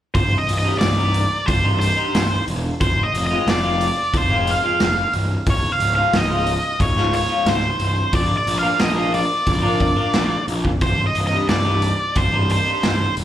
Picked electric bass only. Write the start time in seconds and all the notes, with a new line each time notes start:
0.15 C1
0.48 C1
0.83 C1
1.48 C1
2.15 C1
2.48 E1
2.81 F1
3.14 F1
3.47 F1
4.14 F1
4.81 F1
5.14 C1
5.47 C#1
5.80 C#1
6.13 C#1
6.80 C#1
7.46 C#1
7.80 C1
8.13 A#1
8.47 A#1
8.80 A#1
9.47 A#1
10.14 A#1
10.48 A#1
10.82 C1
11.15 C1
11.48 C1
12.16 C1
12.83 C1
13.18 D#1